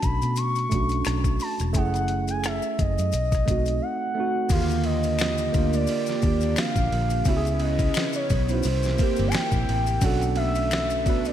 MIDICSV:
0, 0, Header, 1, 6, 480
1, 0, Start_track
1, 0, Tempo, 689655
1, 1213, Time_signature, 4, 2, 24, 8
1, 7884, End_track
2, 0, Start_track
2, 0, Title_t, "Soft synth lead"
2, 0, Program_c, 0, 80
2, 25, Note_on_c, 0, 83, 95
2, 243, Note_off_c, 0, 83, 0
2, 261, Note_on_c, 0, 85, 116
2, 949, Note_off_c, 0, 85, 0
2, 986, Note_on_c, 0, 81, 96
2, 1083, Note_off_c, 0, 81, 0
2, 1225, Note_on_c, 0, 78, 99
2, 1570, Note_off_c, 0, 78, 0
2, 1602, Note_on_c, 0, 80, 97
2, 1692, Note_off_c, 0, 80, 0
2, 1706, Note_on_c, 0, 76, 98
2, 1944, Note_on_c, 0, 75, 95
2, 1954, Note_off_c, 0, 76, 0
2, 2653, Note_off_c, 0, 75, 0
2, 2657, Note_on_c, 0, 78, 106
2, 3139, Note_on_c, 0, 77, 98
2, 3149, Note_off_c, 0, 78, 0
2, 3374, Note_on_c, 0, 75, 100
2, 3384, Note_off_c, 0, 77, 0
2, 3991, Note_off_c, 0, 75, 0
2, 3998, Note_on_c, 0, 74, 96
2, 4579, Note_on_c, 0, 77, 109
2, 4589, Note_off_c, 0, 74, 0
2, 5056, Note_on_c, 0, 76, 101
2, 5066, Note_off_c, 0, 77, 0
2, 5300, Note_on_c, 0, 75, 105
2, 5310, Note_off_c, 0, 76, 0
2, 5670, Note_off_c, 0, 75, 0
2, 5674, Note_on_c, 0, 73, 91
2, 5914, Note_on_c, 0, 72, 95
2, 5924, Note_off_c, 0, 73, 0
2, 6453, Note_off_c, 0, 72, 0
2, 6457, Note_on_c, 0, 81, 74
2, 6504, Note_on_c, 0, 79, 120
2, 6515, Note_off_c, 0, 81, 0
2, 6982, Note_on_c, 0, 78, 106
2, 6992, Note_off_c, 0, 79, 0
2, 7213, Note_off_c, 0, 78, 0
2, 7217, Note_on_c, 0, 76, 113
2, 7841, Note_on_c, 0, 74, 101
2, 7851, Note_off_c, 0, 76, 0
2, 7884, Note_off_c, 0, 74, 0
2, 7884, End_track
3, 0, Start_track
3, 0, Title_t, "Tine electric piano"
3, 0, Program_c, 1, 4
3, 0, Control_c, 1, 64, 127
3, 0, Note_on_c, 1, 57, 91
3, 0, Note_on_c, 1, 61, 82
3, 0, Note_on_c, 1, 62, 80
3, 0, Note_on_c, 1, 66, 105
3, 73, Note_off_c, 1, 61, 0
3, 79, Note_off_c, 1, 62, 0
3, 84, Note_off_c, 1, 66, 0
3, 484, Note_off_c, 1, 57, 0
3, 484, Note_on_c, 1, 57, 67
3, 497, Note_on_c, 1, 61, 63
3, 509, Note_on_c, 1, 62, 65
3, 520, Note_on_c, 1, 66, 73
3, 1081, Note_off_c, 1, 57, 0
3, 1087, Note_off_c, 1, 61, 0
3, 1093, Note_off_c, 1, 62, 0
3, 1099, Note_off_c, 1, 66, 0
3, 1204, Note_on_c, 1, 57, 93
3, 1216, Note_on_c, 1, 61, 81
3, 1222, Control_c, 1, 64, 0
3, 1229, Note_on_c, 1, 64, 81
3, 1241, Note_on_c, 1, 68, 96
3, 1364, Control_c, 1, 64, 127
3, 1986, Note_off_c, 1, 57, 0
3, 1992, Note_off_c, 1, 61, 0
3, 1999, Note_off_c, 1, 64, 0
3, 2005, Note_off_c, 1, 68, 0
3, 2182, Control_c, 1, 64, 0
3, 2286, Control_c, 1, 64, 127
3, 2405, Note_on_c, 1, 57, 73
3, 2416, Note_on_c, 1, 60, 64
3, 2428, Note_on_c, 1, 63, 64
3, 2440, Note_on_c, 1, 66, 79
3, 2808, Note_off_c, 1, 57, 0
3, 2813, Note_off_c, 1, 60, 0
3, 2820, Note_off_c, 1, 63, 0
3, 2825, Note_off_c, 1, 66, 0
3, 2887, Note_on_c, 1, 57, 79
3, 2898, Note_on_c, 1, 60, 68
3, 2908, Note_on_c, 1, 63, 71
3, 2922, Note_on_c, 1, 66, 87
3, 3090, Note_off_c, 1, 57, 0
3, 3095, Note_off_c, 1, 60, 0
3, 3100, Note_off_c, 1, 63, 0
3, 3107, Note_off_c, 1, 66, 0
3, 3125, Note_on_c, 1, 58, 99
3, 3138, Note_on_c, 1, 50, 97
3, 3143, Control_c, 1, 64, 0
3, 3148, Note_on_c, 1, 65, 95
3, 3159, Note_on_c, 1, 67, 108
3, 3253, Control_c, 1, 64, 127
3, 3721, Note_off_c, 1, 58, 0
3, 3727, Note_off_c, 1, 50, 0
3, 3733, Note_off_c, 1, 65, 0
3, 3738, Note_off_c, 1, 67, 0
3, 3844, Note_on_c, 1, 58, 74
3, 3854, Note_on_c, 1, 62, 67
3, 3865, Note_on_c, 1, 65, 71
3, 3878, Note_on_c, 1, 70, 82
3, 4248, Note_off_c, 1, 58, 0
3, 4253, Note_off_c, 1, 62, 0
3, 4258, Note_off_c, 1, 65, 0
3, 4264, Note_off_c, 1, 70, 0
3, 4326, Note_on_c, 1, 58, 70
3, 4338, Note_on_c, 1, 62, 64
3, 4350, Note_on_c, 1, 65, 61
3, 4361, Note_on_c, 1, 67, 77
3, 4922, Note_off_c, 1, 58, 0
3, 4928, Note_off_c, 1, 62, 0
3, 4933, Note_off_c, 1, 65, 0
3, 4939, Note_off_c, 1, 67, 0
3, 5046, Note_on_c, 1, 59, 101
3, 5059, Note_on_c, 1, 61, 94
3, 5061, Control_c, 1, 64, 0
3, 5070, Note_on_c, 1, 64, 94
3, 5082, Note_on_c, 1, 66, 90
3, 5120, Note_off_c, 1, 66, 0
3, 5127, Note_on_c, 1, 68, 118
3, 5203, Control_c, 1, 64, 127
3, 5731, Note_off_c, 1, 59, 0
3, 5737, Note_off_c, 1, 61, 0
3, 5742, Note_off_c, 1, 64, 0
3, 5771, Note_off_c, 1, 68, 0
3, 5906, Note_on_c, 1, 59, 71
3, 5917, Note_on_c, 1, 63, 65
3, 5929, Note_on_c, 1, 64, 69
3, 5941, Note_on_c, 1, 66, 78
3, 6011, Note_off_c, 1, 59, 0
3, 6016, Note_off_c, 1, 63, 0
3, 6022, Control_c, 1, 64, 0
3, 6023, Note_off_c, 1, 64, 0
3, 6029, Note_off_c, 1, 66, 0
3, 6147, Control_c, 1, 64, 127
3, 6249, Note_on_c, 1, 58, 81
3, 6261, Note_on_c, 1, 64, 70
3, 6272, Note_on_c, 1, 70, 71
3, 6284, Note_on_c, 1, 67, 90
3, 6843, Note_off_c, 1, 58, 0
3, 6849, Note_off_c, 1, 64, 0
3, 6855, Note_off_c, 1, 70, 0
3, 6860, Note_off_c, 1, 67, 0
3, 6968, Note_on_c, 1, 61, 99
3, 6978, Note_on_c, 1, 62, 93
3, 6984, Control_c, 1, 64, 0
3, 6991, Note_on_c, 1, 66, 90
3, 7001, Note_on_c, 1, 69, 116
3, 7104, Control_c, 1, 64, 127
3, 7562, Note_off_c, 1, 61, 0
3, 7568, Note_off_c, 1, 62, 0
3, 7574, Note_off_c, 1, 66, 0
3, 7579, Note_off_c, 1, 69, 0
3, 7689, Note_on_c, 1, 59, 80
3, 7700, Note_on_c, 1, 62, 68
3, 7711, Note_on_c, 1, 66, 65
3, 7723, Note_on_c, 1, 71, 81
3, 7884, Note_off_c, 1, 59, 0
3, 7884, Note_off_c, 1, 62, 0
3, 7884, Note_off_c, 1, 66, 0
3, 7884, Note_off_c, 1, 71, 0
3, 7884, End_track
4, 0, Start_track
4, 0, Title_t, "Analog synth pad"
4, 0, Program_c, 2, 89
4, 3129, Note_on_c, 2, 58, 81
4, 3131, Note_on_c, 2, 50, 83
4, 3131, Note_on_c, 2, 67, 97
4, 5032, Note_off_c, 2, 58, 0
4, 5033, Note_off_c, 2, 50, 0
4, 5033, Note_off_c, 2, 67, 0
4, 5054, Note_on_c, 2, 59, 76
4, 5054, Note_on_c, 2, 61, 79
4, 5055, Note_on_c, 2, 64, 92
4, 5056, Note_on_c, 2, 49, 86
4, 6004, Note_off_c, 2, 59, 0
4, 6004, Note_off_c, 2, 61, 0
4, 6004, Note_off_c, 2, 64, 0
4, 6005, Note_off_c, 2, 49, 0
4, 6012, Note_on_c, 2, 48, 81
4, 6012, Note_on_c, 2, 64, 74
4, 6013, Note_on_c, 2, 58, 83
4, 6015, Note_on_c, 2, 67, 94
4, 6963, Note_off_c, 2, 48, 0
4, 6963, Note_off_c, 2, 64, 0
4, 6964, Note_off_c, 2, 58, 0
4, 6964, Note_off_c, 2, 67, 0
4, 6973, Note_on_c, 2, 59, 77
4, 6974, Note_on_c, 2, 50, 99
4, 6975, Note_on_c, 2, 57, 81
4, 7884, Note_off_c, 2, 50, 0
4, 7884, Note_off_c, 2, 57, 0
4, 7884, Note_off_c, 2, 59, 0
4, 7884, End_track
5, 0, Start_track
5, 0, Title_t, "Fingered electric bass"
5, 0, Program_c, 3, 33
5, 28, Note_on_c, 3, 35, 83
5, 144, Note_off_c, 3, 35, 0
5, 158, Note_on_c, 3, 47, 91
5, 462, Note_off_c, 3, 47, 0
5, 506, Note_on_c, 3, 35, 82
5, 715, Note_off_c, 3, 35, 0
5, 741, Note_on_c, 3, 35, 83
5, 953, Note_off_c, 3, 35, 0
5, 1115, Note_on_c, 3, 28, 81
5, 1218, Note_off_c, 3, 28, 0
5, 1218, Note_on_c, 3, 30, 97
5, 1805, Note_off_c, 3, 30, 0
5, 1949, Note_on_c, 3, 30, 89
5, 2065, Note_off_c, 3, 30, 0
5, 2079, Note_on_c, 3, 42, 88
5, 2168, Note_off_c, 3, 42, 0
5, 2180, Note_on_c, 3, 35, 91
5, 2392, Note_off_c, 3, 35, 0
5, 2425, Note_on_c, 3, 35, 90
5, 2635, Note_off_c, 3, 35, 0
5, 3136, Note_on_c, 3, 39, 106
5, 3827, Note_off_c, 3, 39, 0
5, 3863, Note_on_c, 3, 38, 94
5, 4074, Note_off_c, 3, 38, 0
5, 4342, Note_on_c, 3, 39, 92
5, 4553, Note_off_c, 3, 39, 0
5, 4709, Note_on_c, 3, 34, 93
5, 4802, Note_off_c, 3, 34, 0
5, 4818, Note_on_c, 3, 34, 91
5, 5031, Note_off_c, 3, 34, 0
5, 5055, Note_on_c, 3, 37, 115
5, 5485, Note_off_c, 3, 37, 0
5, 5786, Note_on_c, 3, 35, 94
5, 5995, Note_off_c, 3, 35, 0
5, 6022, Note_on_c, 3, 36, 101
5, 6233, Note_off_c, 3, 36, 0
5, 6397, Note_on_c, 3, 31, 95
5, 6486, Note_off_c, 3, 31, 0
5, 6631, Note_on_c, 3, 34, 99
5, 6723, Note_off_c, 3, 34, 0
5, 6741, Note_on_c, 3, 33, 85
5, 6953, Note_off_c, 3, 33, 0
5, 6978, Note_on_c, 3, 35, 100
5, 7884, Note_off_c, 3, 35, 0
5, 7884, End_track
6, 0, Start_track
6, 0, Title_t, "Drums"
6, 17, Note_on_c, 9, 42, 64
6, 20, Note_on_c, 9, 82, 38
6, 21, Note_on_c, 9, 36, 92
6, 87, Note_off_c, 9, 42, 0
6, 90, Note_off_c, 9, 36, 0
6, 90, Note_off_c, 9, 82, 0
6, 151, Note_on_c, 9, 82, 37
6, 161, Note_on_c, 9, 42, 39
6, 220, Note_off_c, 9, 82, 0
6, 231, Note_off_c, 9, 42, 0
6, 249, Note_on_c, 9, 82, 56
6, 260, Note_on_c, 9, 42, 79
6, 319, Note_off_c, 9, 82, 0
6, 329, Note_off_c, 9, 42, 0
6, 385, Note_on_c, 9, 82, 36
6, 408, Note_on_c, 9, 42, 34
6, 455, Note_off_c, 9, 82, 0
6, 478, Note_off_c, 9, 42, 0
6, 495, Note_on_c, 9, 82, 41
6, 500, Note_on_c, 9, 36, 89
6, 501, Note_on_c, 9, 42, 69
6, 564, Note_off_c, 9, 82, 0
6, 569, Note_off_c, 9, 36, 0
6, 571, Note_off_c, 9, 42, 0
6, 620, Note_on_c, 9, 82, 38
6, 639, Note_on_c, 9, 42, 42
6, 690, Note_off_c, 9, 82, 0
6, 708, Note_off_c, 9, 42, 0
6, 729, Note_on_c, 9, 26, 57
6, 729, Note_on_c, 9, 82, 62
6, 742, Note_on_c, 9, 37, 97
6, 749, Note_on_c, 9, 42, 77
6, 799, Note_off_c, 9, 26, 0
6, 799, Note_off_c, 9, 82, 0
6, 812, Note_off_c, 9, 37, 0
6, 818, Note_off_c, 9, 42, 0
6, 865, Note_on_c, 9, 36, 80
6, 866, Note_on_c, 9, 82, 41
6, 935, Note_off_c, 9, 36, 0
6, 936, Note_off_c, 9, 82, 0
6, 971, Note_on_c, 9, 82, 46
6, 981, Note_on_c, 9, 46, 42
6, 1041, Note_off_c, 9, 82, 0
6, 1051, Note_off_c, 9, 46, 0
6, 1109, Note_on_c, 9, 82, 43
6, 1111, Note_on_c, 9, 42, 44
6, 1122, Note_on_c, 9, 37, 32
6, 1178, Note_off_c, 9, 82, 0
6, 1181, Note_off_c, 9, 42, 0
6, 1192, Note_off_c, 9, 37, 0
6, 1210, Note_on_c, 9, 82, 62
6, 1213, Note_on_c, 9, 36, 106
6, 1217, Note_on_c, 9, 42, 80
6, 1280, Note_off_c, 9, 82, 0
6, 1283, Note_off_c, 9, 36, 0
6, 1286, Note_off_c, 9, 42, 0
6, 1349, Note_on_c, 9, 42, 36
6, 1359, Note_on_c, 9, 82, 41
6, 1419, Note_off_c, 9, 42, 0
6, 1429, Note_off_c, 9, 82, 0
6, 1448, Note_on_c, 9, 42, 63
6, 1518, Note_off_c, 9, 42, 0
6, 1584, Note_on_c, 9, 82, 39
6, 1591, Note_on_c, 9, 42, 53
6, 1654, Note_off_c, 9, 82, 0
6, 1661, Note_off_c, 9, 42, 0
6, 1696, Note_on_c, 9, 26, 59
6, 1696, Note_on_c, 9, 82, 58
6, 1699, Note_on_c, 9, 42, 66
6, 1710, Note_on_c, 9, 37, 102
6, 1765, Note_off_c, 9, 26, 0
6, 1765, Note_off_c, 9, 82, 0
6, 1768, Note_off_c, 9, 42, 0
6, 1780, Note_off_c, 9, 37, 0
6, 1825, Note_on_c, 9, 82, 45
6, 1895, Note_off_c, 9, 82, 0
6, 1940, Note_on_c, 9, 82, 40
6, 1942, Note_on_c, 9, 36, 89
6, 1942, Note_on_c, 9, 42, 62
6, 2009, Note_off_c, 9, 82, 0
6, 2011, Note_off_c, 9, 36, 0
6, 2011, Note_off_c, 9, 42, 0
6, 2075, Note_on_c, 9, 82, 42
6, 2084, Note_on_c, 9, 42, 40
6, 2145, Note_off_c, 9, 82, 0
6, 2154, Note_off_c, 9, 42, 0
6, 2173, Note_on_c, 9, 82, 55
6, 2182, Note_on_c, 9, 42, 82
6, 2242, Note_off_c, 9, 82, 0
6, 2252, Note_off_c, 9, 42, 0
6, 2310, Note_on_c, 9, 82, 38
6, 2312, Note_on_c, 9, 36, 92
6, 2329, Note_on_c, 9, 37, 35
6, 2331, Note_on_c, 9, 42, 34
6, 2379, Note_off_c, 9, 82, 0
6, 2381, Note_off_c, 9, 36, 0
6, 2398, Note_off_c, 9, 37, 0
6, 2400, Note_off_c, 9, 42, 0
6, 2420, Note_on_c, 9, 36, 99
6, 2420, Note_on_c, 9, 82, 39
6, 2424, Note_on_c, 9, 42, 75
6, 2490, Note_off_c, 9, 36, 0
6, 2490, Note_off_c, 9, 82, 0
6, 2494, Note_off_c, 9, 42, 0
6, 2544, Note_on_c, 9, 82, 38
6, 2561, Note_on_c, 9, 42, 43
6, 2614, Note_off_c, 9, 82, 0
6, 2630, Note_off_c, 9, 42, 0
6, 3127, Note_on_c, 9, 82, 67
6, 3132, Note_on_c, 9, 36, 122
6, 3136, Note_on_c, 9, 49, 109
6, 3138, Note_on_c, 9, 51, 69
6, 3196, Note_off_c, 9, 82, 0
6, 3202, Note_off_c, 9, 36, 0
6, 3205, Note_off_c, 9, 49, 0
6, 3208, Note_off_c, 9, 51, 0
6, 3267, Note_on_c, 9, 51, 38
6, 3275, Note_on_c, 9, 82, 46
6, 3337, Note_off_c, 9, 51, 0
6, 3344, Note_off_c, 9, 82, 0
6, 3366, Note_on_c, 9, 51, 58
6, 3436, Note_off_c, 9, 51, 0
6, 3503, Note_on_c, 9, 82, 43
6, 3508, Note_on_c, 9, 51, 48
6, 3572, Note_off_c, 9, 82, 0
6, 3578, Note_off_c, 9, 51, 0
6, 3610, Note_on_c, 9, 26, 68
6, 3610, Note_on_c, 9, 82, 64
6, 3617, Note_on_c, 9, 51, 61
6, 3629, Note_on_c, 9, 38, 110
6, 3679, Note_off_c, 9, 26, 0
6, 3679, Note_off_c, 9, 82, 0
6, 3687, Note_off_c, 9, 51, 0
6, 3699, Note_off_c, 9, 38, 0
6, 3742, Note_on_c, 9, 82, 48
6, 3753, Note_on_c, 9, 51, 39
6, 3812, Note_off_c, 9, 82, 0
6, 3822, Note_off_c, 9, 51, 0
6, 3856, Note_on_c, 9, 51, 56
6, 3856, Note_on_c, 9, 82, 44
6, 3859, Note_on_c, 9, 36, 99
6, 3925, Note_off_c, 9, 51, 0
6, 3926, Note_off_c, 9, 82, 0
6, 3928, Note_off_c, 9, 36, 0
6, 3988, Note_on_c, 9, 82, 46
6, 3997, Note_on_c, 9, 51, 39
6, 4058, Note_off_c, 9, 82, 0
6, 4067, Note_off_c, 9, 51, 0
6, 4085, Note_on_c, 9, 82, 64
6, 4098, Note_on_c, 9, 51, 74
6, 4155, Note_off_c, 9, 82, 0
6, 4167, Note_off_c, 9, 51, 0
6, 4220, Note_on_c, 9, 82, 41
6, 4242, Note_on_c, 9, 38, 41
6, 4289, Note_off_c, 9, 82, 0
6, 4311, Note_off_c, 9, 38, 0
6, 4328, Note_on_c, 9, 82, 43
6, 4337, Note_on_c, 9, 36, 107
6, 4338, Note_on_c, 9, 51, 68
6, 4398, Note_off_c, 9, 82, 0
6, 4406, Note_off_c, 9, 36, 0
6, 4408, Note_off_c, 9, 51, 0
6, 4459, Note_on_c, 9, 82, 41
6, 4475, Note_on_c, 9, 51, 40
6, 4529, Note_off_c, 9, 82, 0
6, 4545, Note_off_c, 9, 51, 0
6, 4567, Note_on_c, 9, 26, 63
6, 4567, Note_on_c, 9, 82, 63
6, 4582, Note_on_c, 9, 38, 115
6, 4589, Note_on_c, 9, 51, 71
6, 4637, Note_off_c, 9, 26, 0
6, 4637, Note_off_c, 9, 82, 0
6, 4651, Note_off_c, 9, 38, 0
6, 4658, Note_off_c, 9, 51, 0
6, 4703, Note_on_c, 9, 36, 87
6, 4703, Note_on_c, 9, 82, 43
6, 4773, Note_off_c, 9, 36, 0
6, 4773, Note_off_c, 9, 82, 0
6, 4819, Note_on_c, 9, 51, 56
6, 4889, Note_off_c, 9, 51, 0
6, 4941, Note_on_c, 9, 82, 49
6, 4949, Note_on_c, 9, 51, 42
6, 5010, Note_off_c, 9, 82, 0
6, 5019, Note_off_c, 9, 51, 0
6, 5045, Note_on_c, 9, 82, 68
6, 5050, Note_on_c, 9, 36, 122
6, 5055, Note_on_c, 9, 51, 74
6, 5114, Note_off_c, 9, 82, 0
6, 5120, Note_off_c, 9, 36, 0
6, 5125, Note_off_c, 9, 51, 0
6, 5186, Note_on_c, 9, 51, 38
6, 5195, Note_on_c, 9, 82, 44
6, 5255, Note_off_c, 9, 51, 0
6, 5264, Note_off_c, 9, 82, 0
6, 5287, Note_on_c, 9, 51, 62
6, 5356, Note_off_c, 9, 51, 0
6, 5420, Note_on_c, 9, 82, 42
6, 5422, Note_on_c, 9, 36, 100
6, 5430, Note_on_c, 9, 51, 49
6, 5489, Note_off_c, 9, 82, 0
6, 5492, Note_off_c, 9, 36, 0
6, 5500, Note_off_c, 9, 51, 0
6, 5528, Note_on_c, 9, 26, 69
6, 5528, Note_on_c, 9, 82, 66
6, 5536, Note_on_c, 9, 51, 61
6, 5548, Note_on_c, 9, 38, 119
6, 5597, Note_off_c, 9, 26, 0
6, 5597, Note_off_c, 9, 82, 0
6, 5606, Note_off_c, 9, 51, 0
6, 5617, Note_off_c, 9, 38, 0
6, 5658, Note_on_c, 9, 82, 48
6, 5675, Note_on_c, 9, 51, 37
6, 5728, Note_off_c, 9, 82, 0
6, 5745, Note_off_c, 9, 51, 0
6, 5774, Note_on_c, 9, 82, 46
6, 5777, Note_on_c, 9, 51, 57
6, 5779, Note_on_c, 9, 36, 92
6, 5843, Note_off_c, 9, 82, 0
6, 5847, Note_off_c, 9, 51, 0
6, 5849, Note_off_c, 9, 36, 0
6, 5906, Note_on_c, 9, 82, 44
6, 5921, Note_on_c, 9, 51, 36
6, 5975, Note_off_c, 9, 82, 0
6, 5991, Note_off_c, 9, 51, 0
6, 6006, Note_on_c, 9, 82, 60
6, 6021, Note_on_c, 9, 51, 75
6, 6076, Note_off_c, 9, 82, 0
6, 6090, Note_off_c, 9, 51, 0
6, 6146, Note_on_c, 9, 82, 41
6, 6168, Note_on_c, 9, 38, 41
6, 6216, Note_off_c, 9, 82, 0
6, 6237, Note_off_c, 9, 38, 0
6, 6251, Note_on_c, 9, 82, 44
6, 6259, Note_on_c, 9, 36, 100
6, 6263, Note_on_c, 9, 51, 67
6, 6321, Note_off_c, 9, 82, 0
6, 6329, Note_off_c, 9, 36, 0
6, 6333, Note_off_c, 9, 51, 0
6, 6377, Note_on_c, 9, 82, 41
6, 6399, Note_on_c, 9, 51, 40
6, 6447, Note_off_c, 9, 82, 0
6, 6468, Note_off_c, 9, 51, 0
6, 6485, Note_on_c, 9, 26, 66
6, 6485, Note_on_c, 9, 82, 69
6, 6504, Note_on_c, 9, 38, 118
6, 6511, Note_on_c, 9, 51, 68
6, 6555, Note_off_c, 9, 26, 0
6, 6555, Note_off_c, 9, 82, 0
6, 6574, Note_off_c, 9, 38, 0
6, 6581, Note_off_c, 9, 51, 0
6, 6623, Note_on_c, 9, 82, 46
6, 6625, Note_on_c, 9, 36, 89
6, 6693, Note_off_c, 9, 82, 0
6, 6695, Note_off_c, 9, 36, 0
6, 6744, Note_on_c, 9, 51, 56
6, 6813, Note_off_c, 9, 51, 0
6, 6866, Note_on_c, 9, 82, 47
6, 6873, Note_on_c, 9, 51, 40
6, 6936, Note_off_c, 9, 82, 0
6, 6942, Note_off_c, 9, 51, 0
6, 6968, Note_on_c, 9, 82, 69
6, 6972, Note_on_c, 9, 36, 123
6, 6977, Note_on_c, 9, 51, 76
6, 7037, Note_off_c, 9, 82, 0
6, 7042, Note_off_c, 9, 36, 0
6, 7047, Note_off_c, 9, 51, 0
6, 7109, Note_on_c, 9, 51, 36
6, 7115, Note_on_c, 9, 82, 46
6, 7178, Note_off_c, 9, 51, 0
6, 7185, Note_off_c, 9, 82, 0
6, 7208, Note_on_c, 9, 51, 61
6, 7277, Note_off_c, 9, 51, 0
6, 7343, Note_on_c, 9, 82, 44
6, 7350, Note_on_c, 9, 51, 49
6, 7413, Note_off_c, 9, 82, 0
6, 7420, Note_off_c, 9, 51, 0
6, 7455, Note_on_c, 9, 26, 65
6, 7455, Note_on_c, 9, 82, 65
6, 7458, Note_on_c, 9, 51, 61
6, 7470, Note_on_c, 9, 38, 113
6, 7525, Note_off_c, 9, 26, 0
6, 7525, Note_off_c, 9, 82, 0
6, 7528, Note_off_c, 9, 51, 0
6, 7539, Note_off_c, 9, 38, 0
6, 7587, Note_on_c, 9, 82, 48
6, 7596, Note_on_c, 9, 51, 38
6, 7657, Note_off_c, 9, 82, 0
6, 7665, Note_off_c, 9, 51, 0
6, 7697, Note_on_c, 9, 51, 58
6, 7699, Note_on_c, 9, 36, 105
6, 7700, Note_on_c, 9, 82, 42
6, 7766, Note_off_c, 9, 51, 0
6, 7769, Note_off_c, 9, 36, 0
6, 7769, Note_off_c, 9, 82, 0
6, 7829, Note_on_c, 9, 82, 44
6, 7840, Note_on_c, 9, 51, 39
6, 7884, Note_off_c, 9, 51, 0
6, 7884, Note_off_c, 9, 82, 0
6, 7884, End_track
0, 0, End_of_file